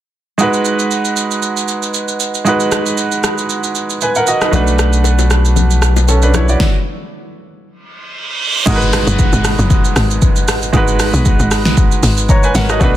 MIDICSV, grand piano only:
0, 0, Header, 1, 2, 480
1, 0, Start_track
1, 0, Key_signature, 5, "minor"
1, 0, Tempo, 517241
1, 364, Time_signature, 4, 2, 24, 8
1, 12033, End_track
2, 0, Start_track
2, 0, Title_t, "Grand piano"
2, 0, Program_c, 0, 0
2, 351, Note_on_c, 0, 56, 74
2, 363, Note_on_c, 0, 63, 68
2, 376, Note_on_c, 0, 66, 69
2, 389, Note_on_c, 0, 71, 85
2, 533, Control_c, 0, 64, 127
2, 2240, Note_off_c, 0, 56, 0
2, 2247, Note_off_c, 0, 63, 0
2, 2253, Note_off_c, 0, 66, 0
2, 2259, Note_off_c, 0, 71, 0
2, 2270, Note_on_c, 0, 56, 75
2, 2281, Note_on_c, 0, 63, 68
2, 2294, Note_on_c, 0, 66, 69
2, 2306, Note_on_c, 0, 71, 83
2, 3694, Note_off_c, 0, 63, 0
2, 3701, Note_off_c, 0, 66, 0
2, 3707, Note_off_c, 0, 71, 0
2, 3731, Note_on_c, 0, 80, 64
2, 3735, Note_on_c, 0, 71, 57
2, 3853, Note_off_c, 0, 80, 0
2, 3855, Note_off_c, 0, 71, 0
2, 3862, Note_on_c, 0, 78, 68
2, 3868, Note_on_c, 0, 70, 60
2, 3962, Note_off_c, 0, 78, 0
2, 3965, Note_off_c, 0, 70, 0
2, 3970, Note_on_c, 0, 75, 67
2, 3974, Note_on_c, 0, 66, 60
2, 4092, Note_off_c, 0, 75, 0
2, 4095, Note_off_c, 0, 66, 0
2, 4101, Note_on_c, 0, 71, 62
2, 4107, Note_on_c, 0, 63, 53
2, 4160, Note_off_c, 0, 56, 0
2, 4189, Note_on_c, 0, 57, 78
2, 4202, Note_on_c, 0, 62, 69
2, 4214, Note_off_c, 0, 71, 0
2, 4215, Control_c, 0, 64, 0
2, 4215, Note_on_c, 0, 66, 69
2, 4228, Note_on_c, 0, 71, 86
2, 4330, Note_off_c, 0, 63, 0
2, 4385, Control_c, 0, 64, 127
2, 5614, Note_off_c, 0, 62, 0
2, 5621, Note_off_c, 0, 66, 0
2, 5627, Note_off_c, 0, 71, 0
2, 5649, Note_on_c, 0, 69, 63
2, 5653, Note_on_c, 0, 61, 55
2, 5772, Note_off_c, 0, 69, 0
2, 5774, Note_off_c, 0, 61, 0
2, 5781, Note_on_c, 0, 71, 68
2, 5786, Note_on_c, 0, 62, 59
2, 5881, Note_off_c, 0, 71, 0
2, 5884, Note_off_c, 0, 62, 0
2, 5888, Note_on_c, 0, 73, 69
2, 5894, Note_on_c, 0, 64, 57
2, 6012, Note_off_c, 0, 73, 0
2, 6015, Note_off_c, 0, 64, 0
2, 6025, Note_on_c, 0, 74, 67
2, 6030, Note_on_c, 0, 66, 58
2, 6080, Note_off_c, 0, 57, 0
2, 6136, Control_c, 0, 64, 0
2, 6249, Note_off_c, 0, 74, 0
2, 6252, Note_off_c, 0, 66, 0
2, 8033, Note_on_c, 0, 56, 81
2, 8046, Note_on_c, 0, 63, 74
2, 8058, Note_on_c, 0, 66, 75
2, 8071, Note_on_c, 0, 70, 71
2, 8121, Note_off_c, 0, 70, 0
2, 8128, Note_on_c, 0, 71, 90
2, 8216, Control_c, 0, 64, 127
2, 9921, Note_off_c, 0, 56, 0
2, 9928, Note_off_c, 0, 63, 0
2, 9934, Note_off_c, 0, 66, 0
2, 9954, Note_on_c, 0, 56, 79
2, 9966, Note_on_c, 0, 63, 74
2, 9969, Note_off_c, 0, 71, 0
2, 9979, Note_on_c, 0, 66, 74
2, 9992, Note_on_c, 0, 71, 91
2, 11148, Note_off_c, 0, 66, 0
2, 11154, Note_off_c, 0, 71, 0
2, 11413, Note_on_c, 0, 82, 68
2, 11418, Note_on_c, 0, 73, 58
2, 11534, Note_off_c, 0, 82, 0
2, 11537, Note_off_c, 0, 73, 0
2, 11541, Note_on_c, 0, 80, 74
2, 11548, Note_on_c, 0, 71, 61
2, 11641, Note_off_c, 0, 80, 0
2, 11645, Note_off_c, 0, 71, 0
2, 11650, Note_on_c, 0, 78, 73
2, 11655, Note_on_c, 0, 70, 60
2, 11773, Note_off_c, 0, 78, 0
2, 11775, Note_off_c, 0, 70, 0
2, 11781, Note_on_c, 0, 75, 70
2, 11786, Note_on_c, 0, 66, 58
2, 11842, Note_off_c, 0, 56, 0
2, 11848, Note_off_c, 0, 63, 0
2, 11871, Note_on_c, 0, 57, 78
2, 11883, Note_off_c, 0, 66, 0
2, 11884, Note_on_c, 0, 62, 73
2, 11897, Note_on_c, 0, 66, 76
2, 11898, Control_c, 0, 64, 0
2, 11910, Note_on_c, 0, 71, 94
2, 12007, Note_off_c, 0, 75, 0
2, 12033, Note_off_c, 0, 57, 0
2, 12033, Note_off_c, 0, 62, 0
2, 12033, Note_off_c, 0, 66, 0
2, 12033, Note_off_c, 0, 71, 0
2, 12033, End_track
0, 0, End_of_file